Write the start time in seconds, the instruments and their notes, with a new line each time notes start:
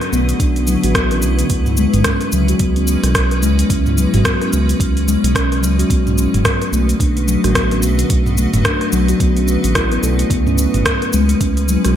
Already playing: ambient pad D3 A3 B3 E4 B4
0.01 cross-stick, open hi-hat, shaker
0.12 analog synth bass B1, steel tongue drum B3, shaker
0.29 open hi-hat, shaker
0.40 analog synth bass B1, steel tongue drum D4, kick, open hi-hat, shaker
0.56 open hi-hat, shaker
0.67 steel tongue drum F#3, shaker
0.84 analog synth bass A1, steel tongue drum F#4, open hi-hat, shaker
0.95 steel tongue drum B3, kick, cross-stick, open hi-hat, shaker
1.11 steel tongue drum C#4, open hi-hat, shaker
1.22 analog synth bass B1, shaker
1.39 open hi-hat, shaker
1.50 analog synth bass C#2, ambient pad G#3 B3 C#4, kick, open hi-hat, shaker
1.66 mid tom, shaker
1.77 steel tongue drum G#3, shaker
1.94 analog synth bass G#1, mid tom, open hi-hat, shaker
2.04 steel tongue drum C#4, kick, cross-stick, mid tom, open hi-hat, shaker
2.21 open hi-hat, shaker
2.32 analog synth bass C#2, steel tongue drum F#3, shaker
2.48 steel tongue drum F#4, open hi-hat, shaker
2.59 analog synth bass C#2, steel tongue drum B3, kick, open hi-hat, shaker
2.76 steel tongue drum C#4, open hi-hat, shaker
2.87 shaker
3.03 analog synth bass B1, cross-stick, open hi-hat, shaker
3.15 kick, cross-stick, open hi-hat, shaker
3.31 open hi-hat, shaker
3.42 analog synth bass C#2, steel tongue drum G#3, shaker
3.59 open hi-hat, shaker
3.70 analog synth bass C#2, steel tongue drum C#4, kick, open hi-hat, shaker
3.86 mid tom, shaker
3.98 steel tongue drum F#3, shaker
4.14 analog synth bass G#1, steel tongue drum F#4, mid tom, open hi-hat, shaker
4.25 kick, cross-stick, mid tom, open hi-hat, shaker
4.42 steel tongue drum C#4, cross-stick, open hi-hat, shaker
4.53 analog synth bass C#2, shaker
4.69 open hi-hat, shaker
4.80 analog synth bass C#2, kick, open hi-hat, shaker
4.97 open hi-hat, shaker
5.08 steel tongue drum G#3, shaker
5.24 analog synth bass B1, open hi-hat, shaker
5.35 steel tongue drum C#4, kick, cross-stick, open hi-hat, shaker
5.52 open hi-hat, shaker
5.63 analog synth bass C#2, steel tongue drum F#3, shaker
5.79 steel tongue drum F#4, open hi-hat, shaker
5.90 analog synth bass B1, ambient pad D3 A3 F#4 B4, steel tongue drum B3, kick, open hi-hat, shaker
6.07 steel tongue drum C#4, mid tom, shaker
6.18 shaker
6.34 analog synth bass F#1, mid tom, open hi-hat, shaker
6.45 kick, cross-stick, mid tom, open hi-hat, shaker
6.62 open hi-hat, shaker
6.72 analog synth bass B1, steel tongue drum A3, shaker
6.89 open hi-hat, shaker
7.00 analog synth bass B1, steel tongue drum D4, kick, open hi-hat, shaker
7.17 open hi-hat, shaker
7.28 steel tongue drum F#3, shaker
7.44 analog synth bass A1, steel tongue drum F#4, cross-stick, open hi-hat, shaker
7.55 steel tongue drum B3, kick, cross-stick, open hi-hat, shaker
7.71 steel tongue drum C#4, open hi-hat, shaker
7.82 analog synth bass B1, shaker
7.99 open hi-hat, shaker
8.10 analog synth bass B1, kick, open hi-hat, shaker
8.26 mid tom, shaker
8.38 steel tongue drum A3, shaker
8.54 analog synth bass F#1, mid tom, open hi-hat, shaker
8.65 steel tongue drum D4, kick, cross-stick, mid tom, open hi-hat, shaker
8.81 cross-stick, open hi-hat, shaker
8.92 analog synth bass B1, steel tongue drum F#3, shaker
9.08 steel tongue drum F#4, open hi-hat, shaker
9.20 analog synth bass B1, steel tongue drum B3, kick, open hi-hat, shaker
9.37 steel tongue drum C#4, open hi-hat, shaker
9.48 shaker
9.64 analog synth bass A1, open hi-hat, shaker
9.75 steel tongue drum E4, kick, cross-stick, open hi-hat, shaker
9.92 steel tongue drum B3, open hi-hat, shaker
10.03 analog synth bass B1, steel tongue drum A4, shaker
10.19 steel tongue drum A3, open hi-hat, shaker
10.30 analog synth bass C#2, ambient pad G#3 C#4 E4, steel tongue drum B3, kick, open hi-hat, shaker
10.47 steel tongue drum C#4, mid tom, shaker
10.58 shaker
10.74 analog synth bass G#1, mid tom, open hi-hat, shaker
10.85 kick, cross-stick, open hi-hat, shaker
11.02 open hi-hat, shaker
11.13 analog synth bass C#2, steel tongue drum G#3, shaker
11.29 open hi-hat, shaker
11.41 analog synth bass C#2, steel tongue drum C#4, kick, open hi-hat, shaker
11.57 open hi-hat, shaker
11.68 steel tongue drum F#3, shaker
11.85 analog synth bass B1, steel tongue drum F#4, cross-stick, open hi-hat, shaker